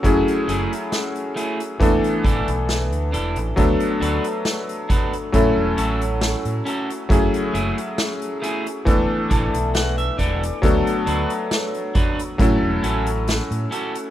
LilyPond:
<<
  \new Staff \with { instrumentName = "Clean electric guitar" } { \time 4/4 \key a \major \tempo 4 = 68 << { r1 | r1 | r2 r8 a''8 fis''16 e''16 d''8 | r1 | } \\ { r8 <a e' gis'>16 r8. <a e' gis'>16 r8. <d' e' a'>16 r8. <d' e' a'>16 r16 | r8 <d' fis' b'>16 r8. <d' fis' b'>16 r8. <cis' fis' a'>16 r8. <cis' fis' a'>16 r16 | r8 <a e' gis'>16 r8. <a e' gis'>16 r8. <d' e' a'>16 r8. <d' e' a'>16 r16 | r8 <d' fis' b'>16 r8. <d' fis' b'>16 r8. <cis' fis' a'>16 r8. <cis' fis' a'>16 r16 | } >> }
  \new Staff \with { instrumentName = "Electric grand piano" } { \time 4/4 \key a \major <fis a cis' e' gis'>2 <e a b d' a'>2 | <fis a b d' a'>2 <fis a cis' e' a'>2 | <fis a cis' e' gis'>2 <e a b d' a'>2 | <fis a b d' a'>2 <fis a cis' e' a'>2 | }
  \new Staff \with { instrumentName = "Fingered electric bass" } { \clef bass \time 4/4 \key a \major fis,,16 r16 fis,,16 r4 r16 e,,16 r16 a,,16 b,,8 d,16 e,,16 a,,16 | d,16 r16 d,16 r4 r16 a,16 e,,16 a,,8 r16 a,16 r8 | fis,,16 r16 fis,,16 r4 r16 e,,16 r16 a,,16 b,,8 r16 e,,16 r16 | d,16 r16 d,16 r4 r16 a,16 e,,16 a,,8 r16 a,16 r8 | }
  \new DrumStaff \with { instrumentName = "Drums" } \drummode { \time 4/4 <hh bd>16 hh16 hh16 hh16 <hh sn>16 hh16 hh16 hh16 <hh bd>16 hh16 <hh bd>16 hh16 <hh sn>16 hh16 hh16 hh16 | <hh bd>16 hh16 hh16 hh16 <hh sn>16 hh16 <hh bd>16 hh16 <hh bd>8 hh16 hh16 <hh sn>16 hh16 hh16 hh16 | <hh bd>16 hh16 hh16 hh16 <hh sn>16 hh16 hh16 hh16 <hh bd>8 <hh bd>16 hh16 <hh sn>16 hh16 <hh bd>16 hh16 | <hh bd>16 hh16 hh16 hh16 <hh sn>16 hh16 <hh bd>16 hh16 <hh bd>8 hh16 hh16 <hh sn>16 hh16 hh16 hh16 | }
>>